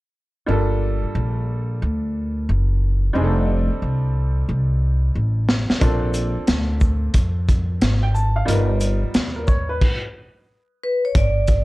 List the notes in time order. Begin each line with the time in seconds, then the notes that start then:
0.46 G1 G3 A#3 D4 F4 A4
1.03 muted upright bass stroke
1.15 A#1
1.82 D2
2.49 F#1
3.13 F1 G3 C4 D4 D#4
3.17 G#4
3.24 A4
3.70 muted upright bass stroke
3.82 C2
4.49 C2
5.15 A1
5.49 snare
5.70 muted upright bass stroke, snare
5.80 A#1 A#3 C4 D4 F4 A4, kick, closed hi-hat
6.14 closed hi-hat, shaker
6.36 muted upright bass stroke
6.47 D2, snare, closed hi-hat
6.81 kick, shaker
7.14 F2, kick, closed hi-hat
7.49 kick, closed hi-hat, shaker
7.81 G#1, snare, closed hi-hat
8.03 G5
8.14 A5, shaker
8.36 F5
8.45 G1 G3 A#3 D#4 F4 A#4, closed hi-hat
8.53 B3
8.81 closed hi-hat, shaker
9.03 muted upright bass stroke
9.14 D#2, snare, closed hi-hat
9.36 A#4
9.47 C#5, kick, shaker
9.69 B4
9.81 kick, crash
10.84 B4
11.05 C#5
11.15 G1 D5, kick, closed hi-hat
11.47 kick, closed hi-hat, shaker